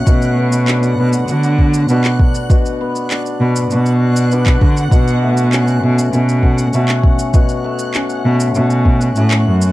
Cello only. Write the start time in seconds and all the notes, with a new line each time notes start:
0.07 B2
0.98 B2
1.28 D3
1.89 B2
3.40 B2
3.71 B2
4.61 D3
4.92 B2
5.83 B2
6.13 B2
6.74 B2
8.25 B2
8.55 B2
9.16 A2
9.46 F#2